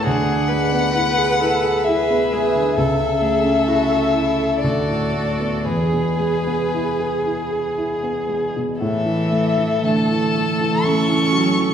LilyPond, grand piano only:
\new Staff \with { instrumentName = "Grand piano" } { \time 3/4 \key a \major \tempo 4 = 61 d,16 d16 gis16 b16 e'16 gis'16 e'16 gis'16 e'16 b16 gis16 d16 | cis,16 cis16 a16 cis'16 e'16 a'16 e'16 a'16 d,16 a,16 a16 b16 | e,16 b,16 gis16 b16 e'16 gis'16 e'16 gis'16 e'16 b16 gis16 b,16 | a,16 e16 a16 e16 d16 e16 a16 e16 a16 e16 fis16 e16 | }